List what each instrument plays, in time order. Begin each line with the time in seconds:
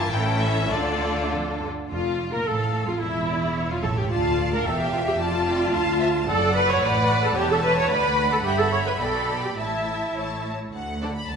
Already playing: violin section F4
0.00 violin section A5
0.11 double bass section A1, cello section A2, viola section E3 C#4, violin section E4 A4 G5
0.41 violin section E5
0.71 double bass section D2, cello section D2, viola section D3 D4, violin section F4 A4 D5
1.32 cello section F2
1.60 cello section G2
1.90 double bass section F1, cello section F2, viola section F4, violin section F4
2.32 cello section A#2, violin section A#4, viola section A#4
2.46 double bass section A1, cello section A2, violin section A4 F5, viola section A4
2.87 cello section F2, violin section F4, viola section F4
3.00 double bass section E1, cello section E2, violin section E4 E5, viola section E4
3.29 violin section D5
3.56 violin section C#5
3.69 cello section F2, violin section F4, viola section F4
3.83 double bass section A1, cello section A2, viola section A4, violin section A4
3.97 cello section G2, violin section G4, viola section G4
4.10 double bass section D2, cello section D2, viola section F4, violin section D5 F5 A5
4.53 viola section A#4
4.65 double bass section E1, cello section E2, viola section A4, violin section E5 F5 G5
4.80 viola section G4
4.93 viola section F4
5.08 viola section G4
5.18 double bass section F1, cello section F2, viola section F4, violin section D5 A5
5.46 violin section D5 G5
5.72 double bass section D2, cello section D2, violin section F5 A5
6.00 violin section C5 E5
6.28 double bass section F#1, cello section F#2, viola section A4, violin section D5 F#5
6.55 viola section B4
6.71 viola section C#5
6.81 double bass section A1, cello section A2, viola section B4, violin section D5 F#5
7.23 viola section A4
7.36 double bass section E1, cello section E2, viola section G4, violin section C#5 E5 A5
7.51 viola section A4
7.64 viola section B4
7.79 viola section C#5
7.90 cello section D2, double bass section D2, viola section B4, violin section D5 F#5 B5
8.32 viola section A4
8.44 double bass section G1, cello section G2, viola section G4, violin section E5 B5
8.59 viola section A4
8.72 viola section C#5
8.87 viola section B4
8.99 double bass section B1, cello section B2, viola section A4, violin section D5 G5
9.44 viola section G4
9.57 double bass section A1, cello section A2, viola section E4, violin section E5 A5
10.15 double bass section A1, cello section A2, violin section C#5 A5
10.73 cello section D2, double bass section D2, violin section F#5
11.02 viola section D3 D4, violin section A4 D5
11.16 violin section B5
11.29 double bass section D2, cello section D2, violin section A5